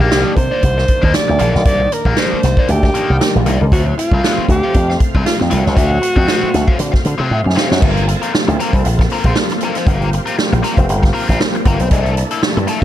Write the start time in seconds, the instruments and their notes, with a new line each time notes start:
Already playing: tonewheel organ D#3 A#3 D4, alto saxophone G4
0.00 slap bass A#1, overdriven electric guitar D#3 A#3 D4
0.10 slap bass C2, overdriven electric guitar D#3 A#3 D4, snare, closed hi-hat
0.36 slap bass C3, alto saxophone C5, muted overdriven electric guitar stroke, kick, closed hi-hat
0.51 overdriven electric guitar D#3 A#3 D4
0.62 slap bass C2, muted overdriven electric guitar stroke, kick, closed hi-hat
0.78 muted overdriven electric guitar stroke, snare
0.88 kick, closed hi-hat
1.02 slap bass D#2, overdriven electric guitar D#3 A#3 D4, kick
1.14 alto saxophone D5, muted overdriven electric guitar stroke, snare, closed hi-hat
1.28 slap bass D2, muted overdriven electric guitar stroke
1.39 slap bass A#1, overdriven electric guitar D#3 A#3 D4, closed hi-hat
1.55 slap bass B1, muted overdriven electric guitar stroke, snare
1.65 slap bass C2, overdriven electric guitar D#3 A#3 D4, alto saxophone D5, kick, closed hi-hat
1.82 muted overdriven electric guitar stroke
1.92 alto saxophone A#4, muted overdriven electric guitar stroke, closed hi-hat
2.05 slap bass A#1, overdriven electric guitar D#3 A#3 D4, kick
2.17 overdriven electric guitar D#3 A#3 D4, alto saxophone C5, snare, closed hi-hat
2.33 muted slap bass stroke
2.43 slap bass C2, muted overdriven electric guitar stroke, snare, closed hi-hat
2.57 overdriven electric guitar D#3 A#3 D4, kick
2.68 slap bass D2, alto saxophone G4, muted overdriven electric guitar stroke, closed hi-hat
2.83 muted overdriven electric guitar stroke, kick, snare
2.94 overdriven electric guitar D#3 A#3 D4, closed hi-hat
3.10 slap bass C2, muted overdriven electric guitar stroke
3.21 muted overdriven electric guitar stroke, snare, closed hi-hat
3.35 slap bass A#1
3.46 slap bass C2, overdriven electric guitar D#3 A#3 D4, closed hi-hat
3.61 slap bass C#2, muted overdriven electric guitar stroke
3.72 slap bass D2, overdriven electric guitar F#3 C4 F4, tonewheel organ A3 C4 F5, alto saxophone F#4, kick, closed hi-hat
3.86 muted overdriven electric guitar stroke
3.98 alto saxophone F4, muted overdriven electric guitar stroke, closed hi-hat
4.12 slap bass C2, overdriven electric guitar F#3 C4 F4, kick
4.24 overdriven electric guitar F#3 C4 F4, snare, closed hi-hat
4.38 muted slap bass stroke
4.49 slap bass D2, alto saxophone G4, muted overdriven electric guitar stroke, kick, closed hi-hat
4.63 overdriven electric guitar F#3 C4 F4
4.74 slap bass F2, muted overdriven electric guitar stroke, kick, closed hi-hat
4.90 muted overdriven electric guitar stroke, snare
5.00 kick, closed hi-hat
5.15 slap bass C2, overdriven electric guitar F#3 C4 F4, kick
5.25 alto saxophone F4, muted overdriven electric guitar stroke, snare, closed hi-hat
5.39 slap bass F2, muted overdriven electric guitar stroke, snare
5.50 slap bass C2, overdriven electric guitar F#3 C4 F4, alto saxophone F#4, closed hi-hat
5.65 slap bass C#2, muted overdriven electric guitar stroke, snare
5.75 slap bass D2, overdriven electric guitar F#3 C4 F4, kick, closed hi-hat
5.92 muted overdriven electric guitar stroke
6.02 muted overdriven electric guitar stroke, closed hi-hat
6.16 slap bass F2, overdriven electric guitar F#3 C4 F4, kick
6.27 overdriven electric guitar F#3 C4 F4, snare, closed hi-hat
6.43 muted slap bass stroke
6.54 slap bass D2, muted overdriven electric guitar stroke, snare, closed hi-hat
6.67 overdriven electric guitar F#3 C4 F4, kick
6.79 slap bass D3, muted overdriven electric guitar stroke, closed hi-hat
6.92 muted overdriven electric guitar stroke, kick, snare
7.05 slap bass D3, closed hi-hat
7.18 slap bass C3, overdriven electric guitar F#3 C4 F4
7.31 slap bass A2
7.44 slap bass F#2, muted overdriven electric guitar stroke
7.56 overdriven electric guitar F#3 C4 F4, snare
7.69 slap bass F#2, muted overdriven electric guitar stroke, snare
7.81 slap bass G1, tonewheel organ A#3 C4 F4 A4, overdriven electric guitar C4 F4 A#4, kick, crash
7.97 closed hi-hat
8.08 muted overdriven electric guitar stroke, closed hi-hat
8.22 overdriven electric guitar C4 F4 A#4, closed hi-hat
8.33 muted overdriven electric guitar stroke, snare
8.48 slap bass D2, muted overdriven electric guitar stroke, closed hi-hat
8.60 overdriven electric guitar C4 F4 A#4, closed hi-hat
8.73 slap bass C2, muted overdriven electric guitar stroke, kick, closed hi-hat
8.85 slap bass A#1, muted overdriven electric guitar stroke, closed hi-hat
8.99 muted overdriven electric guitar stroke, kick, snare
9.10 overdriven electric guitar C4 F4 A#4, open hi-hat
9.24 slap bass A#1, overdriven electric guitar C4 F4 C5, kick, closed hi-hat
9.36 muted overdriven electric guitar stroke, snare
9.49 muted overdriven electric guitar stroke, snare, closed hi-hat
9.60 overdriven electric guitar C4 F4, closed hi-hat
9.64 overdriven electric guitar A#4
9.75 overdriven electric guitar C4 F4 C5, snare, closed hi-hat
9.86 slap bass G1, overdriven electric guitar C4 F4 A#4, tonewheel organ G4, kick, closed hi-hat
10.02 closed hi-hat
10.13 muted overdriven electric guitar stroke, closed hi-hat
10.26 overdriven electric guitar C4 F4 A#4, closed hi-hat
10.37 muted overdriven electric guitar stroke, snare
10.52 slap bass A#1, muted overdriven electric guitar stroke, closed hi-hat
10.63 overdriven electric guitar C4 F4 A#4, snare, closed hi-hat
10.77 slap bass F1, muted overdriven electric guitar stroke, kick, closed hi-hat
10.89 slap bass G1, muted overdriven electric guitar stroke, closed hi-hat
11.03 muted overdriven electric guitar stroke, kick, snare, closed hi-hat
11.13 overdriven electric guitar C4 F4 A#4, open hi-hat
11.28 slap bass A#1, overdriven electric guitar C4 F4 A#4, kick, snare, closed hi-hat
11.40 muted overdriven electric guitar stroke, snare
11.55 muted overdriven electric guitar stroke, closed hi-hat
11.65 slap bass G1, overdriven electric guitar C4 F4 A#4, kick, closed hi-hat
11.79 slap bass B1, muted overdriven electric guitar stroke, closed hi-hat
11.91 slap bass C2, overdriven electric guitar A#3 E4 A4, tonewheel organ D4 E4 A4, kick, closed hi-hat
12.06 closed hi-hat
12.17 muted overdriven electric guitar stroke, closed hi-hat
12.31 overdriven electric guitar A#3 E4 A4, closed hi-hat
12.42 muted overdriven electric guitar stroke, snare
12.57 slap bass G2, muted overdriven electric guitar stroke, closed hi-hat
12.67 overdriven electric guitar A#3 E4 A4, closed hi-hat